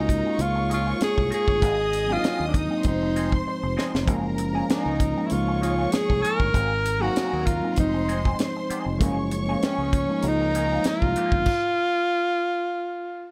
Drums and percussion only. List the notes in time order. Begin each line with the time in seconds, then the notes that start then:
0.09 kick, closed hi-hat
0.39 closed hi-hat
0.71 closed hi-hat
1.01 snare, closed hi-hat
1.18 kick
1.32 closed hi-hat
1.48 kick
1.62 kick, closed hi-hat
1.93 closed hi-hat
2.24 snare, closed hi-hat
2.54 kick, closed hi-hat
2.83 kick, closed hi-hat
3.16 closed hi-hat
3.32 kick
3.79 snare
3.95 snare
4.08 kick, closed hi-hat
4.38 closed hi-hat
4.70 snare, closed hi-hat
5.00 kick, closed hi-hat
5.30 closed hi-hat
5.63 closed hi-hat
5.92 snare, closed hi-hat
6.10 kick
6.24 closed hi-hat
6.40 kick
6.54 kick, closed hi-hat
6.85 closed hi-hat
7.16 snare, closed hi-hat
7.46 kick, closed hi-hat
7.76 kick, closed hi-hat
8.09 closed hi-hat
8.25 kick
8.39 snare, closed hi-hat
8.70 closed hi-hat
9.01 kick, closed hi-hat
9.31 closed hi-hat
9.62 snare, closed hi-hat
9.93 kick, closed hi-hat
10.22 closed hi-hat
10.55 closed hi-hat
10.84 snare, closed hi-hat
11.02 kick
11.16 closed hi-hat
11.32 kick
11.46 kick, crash